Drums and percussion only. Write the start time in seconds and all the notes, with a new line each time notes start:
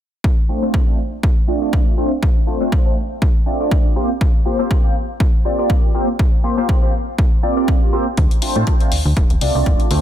0.24 kick
0.74 kick
1.23 kick
1.73 kick
2.23 kick
2.72 kick
3.22 kick
3.71 kick
4.21 kick
4.71 kick
5.20 kick
5.70 kick
6.19 kick
6.69 kick
7.18 kick
7.68 kick
8.17 kick, closed hi-hat
8.31 closed hi-hat
8.42 open hi-hat
8.56 closed hi-hat
8.67 kick, closed hi-hat
8.80 closed hi-hat
8.92 open hi-hat
9.17 kick, closed hi-hat
9.30 closed hi-hat
9.41 open hi-hat
9.66 kick, closed hi-hat
9.80 closed hi-hat
9.91 open hi-hat